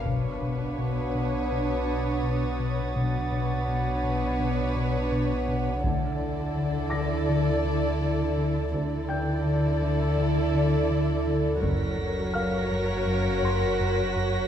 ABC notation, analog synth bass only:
X:1
M:4/4
L:1/8
Q:1/4=83
K:Dm
V:1 name="Analog synth bass" clef=bass
=B,, B,, B,, B,, B,, B,, B,, B,, | =B,, B,, B,, B,, B,, B,, B,, B,, | D, D, D, D, D, D, D, D, | D, D, D, D, D, D, D, D, |
^F,, F,, F,, F,, F,, F,, F,, F,, |]